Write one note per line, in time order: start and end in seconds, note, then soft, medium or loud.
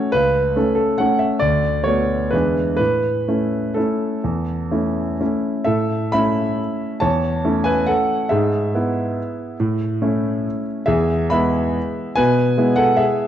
0.00 0.10 C#4 soft
0.00 0.10 F#4 soft
0.00 0.13 C#5 medium
0.12 0.55 C#2 medium
0.12 0.77 B4 medium
0.56 0.96 A3 soft
0.56 0.96 C#4 soft
0.56 0.74 A4 soft
0.75 0.98 A4 medium
0.98 1.38 A3 soft
0.98 1.38 C#4 soft
0.98 1.38 A4 soft
0.98 1.20 F#5 medium
1.19 1.41 E5 medium
1.39 1.84 D2 soft
1.39 1.84 D5 medium
1.84 2.29 A3 soft
1.84 2.29 B3 soft
1.84 2.29 F#4 soft
1.84 2.32 C#5 medium
2.31 2.79 E2 soft
2.31 2.76 G#3 soft
2.31 2.76 D4 soft
2.31 2.77 E4 soft
2.31 2.75 B4 medium
2.77 3.26 A2 soft
2.77 3.75 B4 medium
3.28 3.73 A3 soft
3.28 3.73 C#4 soft
3.28 3.73 E4 soft
3.74 4.20 A3 soft
3.74 4.20 C#4 soft
3.74 4.21 E4 soft
3.74 5.20 A4 soft
4.24 4.70 E2 soft
4.71 5.16 A3 soft
4.71 5.16 C#4 soft
4.71 5.17 E4 soft
5.20 5.64 A3 soft
5.20 5.64 C#4 soft
5.20 5.64 E4 soft
5.64 6.13 A2 soft
5.64 6.10 A4 medium
5.64 6.12 E5 medium
6.12 6.98 A3 soft
6.12 6.98 C#4 soft
6.12 6.98 E4 soft
6.12 6.98 E5 medium
6.12 7.01 B5 medium
7.00 7.43 E2 medium
7.00 7.62 C#5 medium
7.00 7.65 A5 medium
7.44 8.28 A3 soft
7.44 8.28 C#4 soft
7.44 8.28 E4 soft
7.64 7.86 B4 medium
7.64 7.87 G#5 medium
7.86 8.29 A4 medium
7.86 8.31 F#5 medium
8.29 8.73 G#2 medium
8.29 10.62 G#4 medium
8.29 10.65 E5 medium
8.75 9.56 B3 soft
8.75 9.57 E4 soft
9.60 10.00 A2 medium
10.02 10.84 A3 soft
10.02 10.84 C#4 soft
10.02 10.84 E4 soft
10.86 11.31 E2 medium
10.86 11.29 G#4 medium
10.86 11.30 E5 medium
11.30 12.13 G#3 soft
11.30 12.14 B3 soft
11.30 12.14 E4 soft
11.30 12.13 E5 medium
11.30 12.16 B5 medium
12.16 12.56 B2 medium
12.16 12.74 B4 medium
12.16 12.77 G#5 medium
12.58 13.27 G#3 soft
12.58 13.27 B3 soft
12.58 13.27 E4 soft
12.76 12.97 A4 medium
12.76 12.98 F#5 medium
12.97 13.27 G#4 medium
12.97 13.27 E5 medium